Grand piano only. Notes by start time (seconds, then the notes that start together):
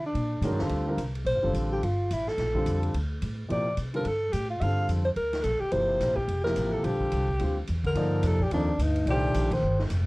0.43 D#3 G#3 C#4 F#4 A#4
0.58 D3 G3 C4 F4 A4
0.87 D3 G3 C4 F4 A#4
1.43 D3 G3 C4 F4 A4
2.54 D3 G3 C4 F4 A4
3.48 C3 F3 A#3 E4 G4
3.93 D3 G3 C4 F4 A4
4.62 D3 G3 C4 F4 A4
5.72 C3 F3 A#3 E4 G4
6.43 C3 F3 A#3 E4 G4
6.82 D3 G3 C4 F4 A4
7.39 D3 G3 C4 F4 G4
7.95 F3 A#3 D#4 A4 D5
8.52 F3 A#3 D#4 A4 D5
9.08 D#3 A3 D4 G4 C5